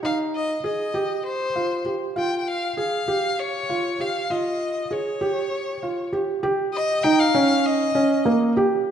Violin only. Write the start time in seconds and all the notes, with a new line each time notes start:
0.05 F5
0.35 D#5
0.65 D#5
1.25 C5
2.18 G5
2.39 G5
2.48 F5
2.78 F5
3.40 C#5
4.01 F5
4.30 D#5
4.92 C#5
6.73 D#5
7.03 G5
7.19 F5
7.66 D#5